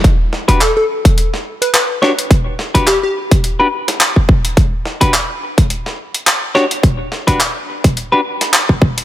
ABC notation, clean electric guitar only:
X:1
M:4/4
L:1/16
Q:"Swing 16ths" 1/4=106
K:D
V:1 name="Clean electric guitar"
z3 [DFGB] z8 z2 [DFGc] z | z3 [DFGB] z4 z [DFGB] z6 | z3 [DFGB] z8 z2 [DFGc] z | z3 [DFGB] z4 z [DFGB] z6 |]